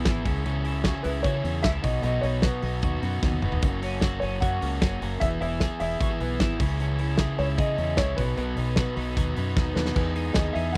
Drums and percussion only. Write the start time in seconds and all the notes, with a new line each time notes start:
0.05 kick, snare, closed hi-hat
0.25 kick, open hi-hat
0.46 closed hi-hat
0.65 open hi-hat
0.84 kick, snare, closed hi-hat
1.04 open hi-hat
1.24 kick, closed hi-hat
1.45 open hi-hat
1.64 kick, snare, closed hi-hat
1.84 kick, open hi-hat
2.03 closed hi-hat
2.23 open hi-hat
2.42 kick, snare, closed hi-hat
2.62 open hi-hat
2.82 kick, closed hi-hat
3.03 open hi-hat
3.23 kick, snare
3.32 high tom
3.42 mid tom
3.52 floor tom
3.62 kick, closed hi-hat
3.82 open hi-hat
4.01 kick, snare, closed hi-hat
4.22 open hi-hat
4.42 kick, closed hi-hat
4.62 open hi-hat
4.82 kick, snare, closed hi-hat
5.02 open hi-hat
5.21 kick, closed hi-hat
5.42 open hi-hat
5.60 kick, snare, closed hi-hat
5.80 open hi-hat
6.01 kick, closed hi-hat
6.20 open hi-hat
6.40 kick, snare, closed hi-hat
6.60 kick, open hi-hat
6.80 closed hi-hat
6.99 open hi-hat
7.18 kick, snare, closed hi-hat
7.39 open hi-hat
7.58 kick, closed hi-hat
7.78 open hi-hat
7.97 kick, snare, closed hi-hat
8.18 kick, open hi-hat
8.38 closed hi-hat
8.57 open hi-hat
8.76 kick, snare, closed hi-hat
8.97 open hi-hat
9.17 kick, closed hi-hat
9.36 open hi-hat
9.57 kick, snare
9.76 snare
9.86 snare
9.96 kick, crash
10.16 open hi-hat
10.34 kick, snare, closed hi-hat
10.55 open hi-hat